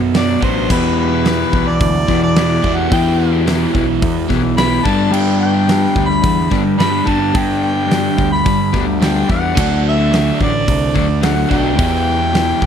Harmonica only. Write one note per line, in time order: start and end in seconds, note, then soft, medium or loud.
0.16 0.41 D5 medium
0.43 0.69 C5 medium
0.71 0.96 B4 medium
0.99 1.69 B4 medium
1.67 2.22 D5 loud
2.23 2.77 D5 loud
2.76 2.90 F#5 loud
2.92 3.43 G5 medium
4.57 4.87 B5 loud
4.85 5.14 A5 loud
5.12 5.39 G5 loud
5.40 6.05 G5 loud
6.06 6.59 B5 loud
6.78 7.08 B5 loud
7.07 7.39 A5 loud
7.37 7.63 G5 loud
7.63 8.28 G5 medium
8.32 8.83 B5 loud
9.01 9.26 G5 loud
9.31 9.81 F#5 loud
9.89 10.38 E5 medium
10.42 10.92 D5 loud
10.97 11.25 D5 medium
11.23 11.51 F#5 medium
11.51 12.66 G5 loud